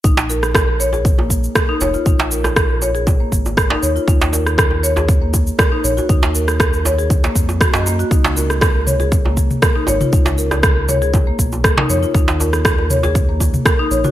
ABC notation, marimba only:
X:1
M:4/4
L:1/16
Q:1/4=119
K:Ebm
V:1 name="Marimba"
E z B z B z d A z B, z2 B E d F | E z B z B z d A z B, z2 B E d F | E z B z B z d A z B, z2 B E d G | E z B z B z d A z B, z2 G e B, G |
E z B z B z d A z B, z2 B E d F | E z B z B z d A z B, z2 B E d F | E z B z B z d A z B, z2 B E d G |]